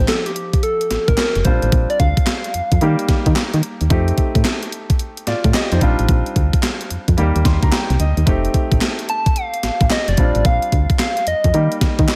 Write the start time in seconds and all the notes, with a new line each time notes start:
Already playing: F3 C4 D#4 G4
0.08 A4, snare, clap, closed hi-hat
0.26 G4, closed hi-hat
0.36 closed hi-hat
0.53 kick, closed hi-hat
0.63 A4, closed hi-hat
0.81 closed hi-hat
0.91 A1, snare, closed hi-hat
1.08 A1 A#4, kick, closed hi-hat
1.17 snare, clap, closed hi-hat
1.35 F1, closed hi-hat
1.45 A#1 G3 C4 D4 F4 C5, kick, closed hi-hat
1.62 A1, closed hi-hat
1.72 A#1, kick, closed hi-hat
1.90 D5, closed hi-hat
2.00 D2 F5, kick, closed hi-hat
2.17 kick, closed hi-hat
2.27 snare, clap, closed hi-hat
2.44 closed hi-hat
2.54 F2, closed hi-hat
2.72 F2, kick, closed hi-hat
2.81 D#3 G3 A#3 D#4 G4, closed hi-hat
2.99 closed hi-hat
3.09 D#3, kick, snare, closed hi-hat
3.26 D#3, kick, closed hi-hat
3.36 snare, clap, closed hi-hat
3.54 D#3, closed hi-hat
3.63 closed hi-hat
3.81 D#2, closed hi-hat
3.90 F2 A3 C4 D#4 G4, kick, closed hi-hat
4.08 closed hi-hat
4.18 kick, closed hi-hat
4.35 A2, kick, closed hi-hat
4.45 snare, clap, closed hi-hat
4.63 closed hi-hat
4.72 closed hi-hat
4.90 kick, closed hi-hat
4.99 closed hi-hat
5.17 closed hi-hat
5.27 A2 F4 D5, snare, closed hi-hat
5.44 A2, kick, closed hi-hat
5.54 G4 D#5, snare, clap, closed hi-hat
5.72 F2 D#4 C5, closed hi-hat
5.81 A#1 G3 C4 D4 F4, kick, closed hi-hat
5.99 A1, closed hi-hat
6.09 A#1, kick, closed hi-hat
6.26 closed hi-hat
6.36 D2, kick, closed hi-hat
6.53 kick, closed hi-hat
6.63 snare, clap, closed hi-hat
6.81 closed hi-hat
6.91 F2, closed hi-hat
7.08 F2, kick, closed hi-hat
7.17 D#2 G3 A#3 D#4 G4, closed hi-hat
7.36 D#2, closed hi-hat
7.45 D#2 C6, kick, snare, closed hi-hat
7.63 D2 A#5, kick, closed hi-hat
7.72 G5, snare, clap, closed hi-hat
7.90 C2, closed hi-hat
8.00 D2 D#5, closed hi-hat
8.17 D#2, closed hi-hat
8.26 F1 A3 C4 D#4 G4, kick, closed hi-hat
8.45 closed hi-hat
8.54 kick, closed hi-hat
8.72 A1, kick, closed hi-hat
8.81 snare, clap, closed hi-hat
8.99 closed hi-hat
9.09 A5, closed hi-hat
9.26 kick, closed hi-hat
9.36 F5, closed hi-hat
9.54 closed hi-hat
9.63 A1, snare, closed hi-hat
9.81 A1, kick, closed hi-hat
9.90 D#5, snare, clap, closed hi-hat
10.08 F1 D5, closed hi-hat
10.17 A#1 G3 C4 D4 F4, kick, closed hi-hat
10.35 A1, closed hi-hat
10.45 A#1 F5, kick, closed hi-hat
10.62 closed hi-hat
10.72 D2, kick, closed hi-hat
10.90 kick, closed hi-hat
10.99 F5, snare, clap, closed hi-hat
11.17 closed hi-hat
11.27 F2 D#5, closed hi-hat
11.44 F2, kick, closed hi-hat
11.53 D#3 G3 A#3 D#4 G4, closed hi-hat
11.72 closed hi-hat
11.81 D#3, kick, snare, closed hi-hat
11.99 D#3, kick, closed hi-hat
12.08 snare, clap, closed hi-hat